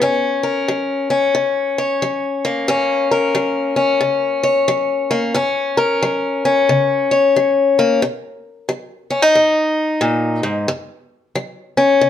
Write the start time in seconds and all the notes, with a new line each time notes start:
0.02 F#2 C#4
0.43 A#4
0.68 F#3
1.10 C#4
1.35 C#3
1.78 C#5
2.02 F#3
2.45 A#3
2.68 F#2 C#4
3.11 A#4
3.35 F#3
3.76 C#4
4.01 C#3
4.43 C#5
4.68 F#3
5.11 A#3
5.34 F#2 C#4
5.77 A#4
6.02 F#3
6.45 C#4
6.69 C#3
7.11 C#5
7.36 F#3
7.79 A#3
8.02 B2
8.69 F#3
9.10 C#4
9.22 D#4
9.35 F#2
10.01 A#2
10.43 G#2
10.68 F#2
11.35 F#3
11.77 C#4
12.01 C#3